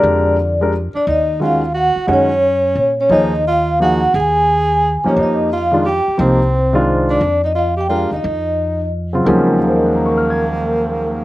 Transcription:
0.00 0.90 F2 medium
0.00 0.68 D3 medium
0.00 0.35 G#3 medium
0.00 0.35 D4 medium
0.00 0.35 G4 medium
0.00 0.36 A#4 medium
0.00 0.70 D5 medium
0.61 0.71 G#3 medium
0.61 0.72 D4 medium
0.61 0.72 G4 medium
0.61 0.72 A#4 medium
0.94 1.06 D4 medium
0.94 1.08 D5 medium
0.94 muted upright bass stroke soft
1.07 1.93 D#2 medium
1.07 1.39 D#4 medium
1.07 1.40 D#5 medium
1.40 1.60 D#3 medium
1.40 1.60 G#3 medium
1.40 1.61 C#4 soft
1.40 1.73 F4 medium
1.40 1.61 F#4 medium
1.46 1.75 F5 medium
1.74 2.06 F#4 medium
1.74 2.11 F#5 medium
1.96 muted upright bass stroke soft
2.07 2.73 F#2 medium
2.07 2.28 D#3 medium
2.07 2.28 G#3 medium
2.07 2.94 C#4 medium
2.07 2.28 C#4 medium
2.07 2.28 F#4 medium
2.13 2.97 C#5 medium
2.75 3.08 A#2 medium
3.01 3.11 C#4 medium
3.01 3.12 C#5 medium
3.09 4.09 D#2 medium
3.09 3.30 F3 medium
3.09 3.30 A#3 medium
3.09 3.43 D#4 medium
3.09 3.31 D#4 medium
3.09 3.31 G#4 medium
3.14 3.48 D#5 medium
3.48 3.78 F4 medium
3.52 3.84 F5 medium
3.80 3.99 F3 medium
3.80 4.00 A#3 soft
3.80 4.00 D#4 medium
3.80 4.12 F#4 medium
3.80 4.00 G#4 medium
3.85 4.14 F#5 medium
4.14 5.00 D#2 medium
4.14 5.00 G#4 medium
4.20 5.03 G#5 medium
5.04 5.48 F3 medium
5.04 5.48 A#3 medium
5.04 5.16 C#4 medium
5.04 5.49 D#4 medium
5.04 5.49 G4 medium
5.04 muted upright bass stroke soft
5.09 5.18 C#5 medium
5.16 6.02 F2 medium
5.16 5.49 D#4 medium
5.23 5.52 D#5 medium
5.53 5.83 F4 medium
5.58 5.89 F5 medium
5.72 5.83 D#3 medium
5.72 5.83 G#3 medium
5.72 5.84 D4 medium
5.72 5.84 F4 medium
5.86 6.17 G4 medium
5.86 6.18 G5 medium
6.08 muted upright bass stroke soft
6.18 7.17 C2 medium
6.18 6.38 F3 medium
6.18 6.38 A#3 medium
6.18 6.93 C4 medium
6.18 6.38 D#4 medium
6.18 6.39 G4 medium
6.22 7.13 C5 medium
6.73 7.18 D#3 medium
6.73 7.18 G#3 medium
6.73 7.19 D4 medium
6.73 7.19 F4 medium
7.10 7.41 D4 medium
7.10 7.42 D5 medium
7.21 8.07 F2 medium
7.44 7.54 D#4 medium
7.44 7.57 D#5 medium
7.55 7.75 F4 medium
7.55 7.79 F5 medium
7.77 7.88 G4 medium
7.81 7.90 G5 medium
7.88 8.08 G#3 soft
7.88 8.09 D4 soft
7.88 8.10 F4 medium
7.88 8.09 G4 soft
7.88 8.10 A#4 medium
7.96 8.15 F5 medium
8.11 8.23 D#2 medium
8.11 8.89 D#4 medium
8.16 8.90 D#5 medium
8.24 9.22 F2 medium
9.13 9.57 C#3 medium
9.13 9.25 F#3 medium
9.13 9.58 C4 medium
9.13 9.58 F4 medium
9.25 11.24 D#2 medium
9.25 11.24 D#3 medium
9.25 11.24 F3 medium
9.25 11.24 F#3 medium
9.25 11.24 G#3 medium
9.25 11.24 A#3 medium
9.25 11.24 C#4 medium
9.25 11.24 A#4 medium
9.60 11.24 G#4 soft
9.68 11.24 C5 soft
9.76 11.24 D#5 soft
9.85 11.24 F#5 soft
9.95 11.24 A#5 soft
10.06 11.24 C#6 soft
10.17 11.24 F6 soft
10.30 11.24 G#6 soft

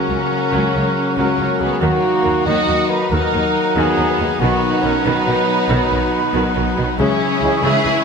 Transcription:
0.00 0.50 C#3 medium
0.00 1.78 C#3 medium
0.00 0.29 F#3 soft
0.00 4.25 F#3 medium
0.00 4.41 A#3 soft
0.00 1.15 C#4 medium
0.00 1.78 C#4 medium
0.00 1.15 F#4 soft
0.00 4.23 F#4 medium
0.00 1.15 A#4 medium
0.00 1.15 F#5 soft
0.00 1.14 C#6 medium
0.09 0.17 C#2 soft
0.09 0.19 F#3 soft
0.09 0.71 C#4 soft
0.30 0.93 F#3 soft
0.51 0.60 C#2 medium
0.51 0.61 C#2 medium
0.51 1.83 C#3 soft
0.51 0.73 F#3 medium
0.73 0.82 C#2 soft
0.73 0.84 C#2 soft
0.73 0.82 F#3 soft
0.73 1.36 C#4 soft
0.95 1.58 F#3 soft
1.16 1.25 C#2 medium
1.16 1.26 C#2 medium
1.16 1.37 F#3 medium
1.16 1.59 C#4 medium
1.16 1.84 C#4 medium
1.16 2.44 F#4 soft
1.16 1.59 A#4 medium
1.16 1.81 F#5 medium
1.16 1.80 C#6 medium
1.37 1.47 C#2 soft
1.37 1.48 C#2 soft
1.37 1.46 F#3 soft
1.37 1.82 C#4 soft
1.59 1.69 C#2 soft
1.59 2.01 F#3 soft
1.59 1.69 F#3 soft
1.59 1.81 B3 medium
1.59 1.81 G#4 medium
1.79 1.89 D#2 medium
1.79 1.90 D#2 medium
1.79 2.02 D#3 medium
1.79 3.10 D#3 medium
1.79 2.46 A#3 medium
1.79 6.94 D#4 medium
1.79 2.47 D#4 medium
1.79 2.45 F#4 medium
1.79 4.23 A#4 medium
1.79 2.45 F#5 medium
1.79 2.44 A#5 medium
1.84 6.96 D#3 medium
2.02 2.88 F#3 soft
2.24 2.33 D#2 soft
2.24 2.34 D#2 soft
2.24 2.32 D#3 soft
2.24 4.42 A#4 soft
2.45 2.54 D#2 medium
2.45 2.55 D#2 medium
2.45 2.67 D#3 medium
2.45 2.88 D#4 medium
2.45 3.74 F#4 soft
2.45 2.89 F#4 medium
2.45 2.89 D#5 medium
2.45 2.88 F#5 medium
2.45 3.09 A#5 medium
2.68 2.76 D#2 soft
2.68 2.77 D#2 soft
2.68 2.76 D#3 soft
2.88 3.53 F#3 soft
2.88 3.10 D#4 medium
2.88 3.10 B4 medium
3.10 3.19 D#2 medium
3.10 3.20 D#2 medium
3.10 4.42 D#3 soft
3.10 3.32 D#3 medium
3.10 4.36 D#4 medium
3.10 3.75 D#4 medium
3.10 3.76 A#4 medium
3.10 4.37 F#5 medium
3.10 4.13 A#5 medium
3.33 3.41 D#2 medium
3.33 3.42 D#2 soft
3.33 3.42 D#3 medium
3.54 4.17 F#3 soft
3.74 3.84 D#2 medium
3.74 3.96 D#3 medium
3.74 4.39 B3 medium
3.74 5.24 F#4 soft
3.74 4.38 G#4 medium
3.98 4.06 D#2 soft
3.98 4.06 D#2 medium
3.98 4.06 D#3 medium
4.18 4.28 D#2 medium
4.18 4.29 D#3 medium
4.18 4.82 F#3 soft
4.39 4.49 B1 medium
4.39 5.67 B2 medium
4.39 4.50 B2 medium
4.39 4.61 D#3 medium
4.39 6.95 F#3 medium
4.39 6.94 B3 medium
4.39 4.83 B3 medium
4.39 6.95 B3 medium
4.39 5.03 D#4 medium
4.39 4.83 F#4 medium
4.39 6.95 F#4 medium
4.39 5.04 F#5 medium
4.39 5.04 B5 medium
4.62 5.89 B3 soft
4.81 4.92 B1 soft
4.81 4.92 B2 medium
4.81 4.91 D#3 soft
4.81 5.46 F#3 medium
4.81 5.04 C#4 medium
4.81 5.04 A#4 medium
5.04 5.13 B1 medium
5.04 5.14 B2 medium
5.04 5.25 D#3 medium
5.04 6.34 D#4 medium
5.04 6.32 D#4 medium
5.04 6.95 D#4 medium
5.04 6.34 B4 medium
5.04 6.96 F#5 medium
5.04 6.95 B5 medium
5.26 5.35 B1 medium
5.26 5.35 B2 medium
5.26 5.35 D#3 medium
5.26 6.53 F#4 medium
5.47 6.10 F#3 soft
5.69 5.77 B1 medium
5.69 7.00 B2 medium
5.69 5.78 B2 medium
5.69 5.90 D#3 medium
5.90 5.99 B1 medium
5.90 6.00 B2 medium
5.90 5.99 D#3 medium
5.90 7.00 B3 medium
6.11 6.76 F#3 medium
6.33 6.42 B1 medium
6.33 6.42 B2 medium
6.33 6.54 D#3 medium
6.33 7.00 D#4 medium
6.54 6.64 B1 medium
6.54 6.64 B2 medium
6.54 6.63 D#3 medium
6.54 7.00 F#4 medium
6.77 6.86 B1 medium
6.77 6.85 B2 medium
6.77 6.85 D#3 medium
6.77 7.00 F#3 medium
6.97 7.07 C#2 medium
6.97 7.19 C#3 medium
6.97 8.04 C#3 medium
6.97 8.04 E3 medium
6.97 7.59 C#4 medium
6.97 8.04 C#4 medium
6.97 8.04 E4 medium
6.97 7.60 G#4 medium
6.97 8.04 E5 medium
6.97 8.04 C#6 medium
7.20 8.04 G#3 medium
7.41 7.50 C#2 medium
7.41 7.51 C#2 medium
7.41 7.49 C#3 medium
7.41 7.50 C#3 medium
7.41 7.50 G#3 medium
7.41 8.04 C#4 medium
7.41 7.51 C#4 medium
7.41 7.50 E4 medium
7.62 7.71 C#2 medium
7.62 7.72 C#2 medium
7.62 7.84 C#3 medium
7.62 8.04 E4 medium
7.62 8.04 G#4 medium
7.62 8.04 E5 medium
7.84 7.93 C#2 medium
7.84 7.94 C#2 medium
7.84 7.95 C#3 medium
7.84 8.04 G#4 medium

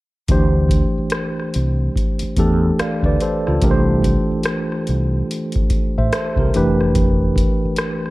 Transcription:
0.28 0.82 D2 medium
0.28 1.69 E3 medium
0.28 1.69 A3 soft
0.28 1.69 D4 medium
0.28 1.70 G4 medium
0.28 1.70 C5 medium
0.28 kick medium
0.28 closed hi-hat medium
0.69 kick medium
0.69 closed hi-hat medium
0.98 muted fretless electric bass stroke soft
1.10 cross-stick medium
1.10 closed hi-hat medium
1.40 cross-stick soft
1.54 1.88 C2 medium
1.54 closed hi-hat medium
1.96 kick medium
1.96 closed hi-hat medium
2.19 muted fretless electric bass stroke soft
2.19 closed hi-hat soft
2.37 2.70 E2 medium
2.37 3.09 E3 medium
2.37 3.09 A3 medium
2.37 3.10 D4 medium
2.37 2.80 G4 medium
2.37 2.80 A4 medium
2.37 kick medium
2.37 closed hi-hat medium
2.80 3.04 D5 soft
2.80 3.04 F5 soft
2.80 muted fretless electric bass stroke soft
2.80 cross-stick medium
2.80 closed hi-hat medium
3.03 3.17 D2 medium
3.03 3.21 B4 soft
3.03 3.21 D5 medium
3.03 kick medium
3.21 3.46 A4 medium
3.21 3.45 C5 medium
3.21 closed hi-hat medium
3.47 3.60 C#2 medium
3.47 3.86 F4 soft
3.47 3.86 A4 medium
3.47 cross-stick soft
3.62 4.16 C2 medium
3.62 5.02 E3 medium
3.62 5.02 A3 medium
3.62 5.02 D4 medium
3.62 5.03 G4 medium
3.62 3.71 A#4 medium
3.62 kick medium
3.62 closed hi-hat medium
3.71 5.06 C5 medium
4.03 kick medium
4.03 closed hi-hat medium
4.31 muted fretless electric bass stroke soft
4.43 cross-stick medium
4.43 closed hi-hat medium
4.72 cross-stick soft
4.87 5.21 C2 medium
4.87 closed hi-hat medium
5.31 closed hi-hat medium
5.52 kick medium
5.52 closed hi-hat soft
5.70 muted fretless electric bass stroke soft
5.70 kick medium
5.70 closed hi-hat medium
5.98 6.10 A1 medium
5.98 6.13 C5 soft
5.98 6.12 E5 medium
6.12 6.38 A4 medium
6.12 6.37 C5 medium
6.12 cross-stick medium
6.12 closed hi-hat medium
6.36 6.50 C2 medium
6.36 6.55 G4 soft
6.36 6.78 A#4 medium
6.36 kick medium
6.54 7.41 F1 medium
6.54 7.94 E3 medium
6.54 7.94 A3 medium
6.54 7.94 D4 medium
6.54 7.95 G4 medium
6.54 7.95 B4 medium
6.54 closed hi-hat medium
6.80 cross-stick soft
6.95 kick medium
6.95 closed hi-hat medium
7.36 kick medium
7.36 closed hi-hat medium
7.65 muted fretless electric bass stroke soft
7.76 cross-stick medium
7.76 closed hi-hat medium
8.06 cross-stick soft

